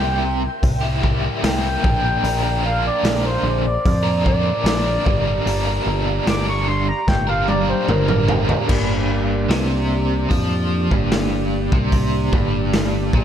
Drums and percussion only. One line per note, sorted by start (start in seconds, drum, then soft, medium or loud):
0.63 kick loud
0.63 open hi-hat medium
1.03 kick medium
1.44 snare loud
1.44 open hi-hat medium
1.84 kick loud
2.24 open hi-hat medium
3.05 snare loud
3.05 open hi-hat medium
3.86 kick medium
3.86 open hi-hat medium
4.26 kick medium
4.66 snare loud
4.66 open hi-hat medium
5.06 kick loud
5.47 open hi-hat medium
6.27 snare loud
6.27 open hi-hat medium
7.08 kick loud
7.08 snare medium
7.48 high tom medium
7.89 mid tom medium
8.08 mid tom medium
8.28 floor tom loud
8.49 floor tom medium
8.69 kick loud
8.69 crash loud
9.51 snare loud
9.51 open hi-hat medium
10.31 kick loud
10.31 open hi-hat medium
10.91 kick medium
11.12 snare loud
11.12 open hi-hat medium
11.72 kick loud
11.92 kick medium
11.92 open hi-hat medium
12.33 kick loud
12.73 snare medium
12.73 open hi-hat medium
13.13 kick loud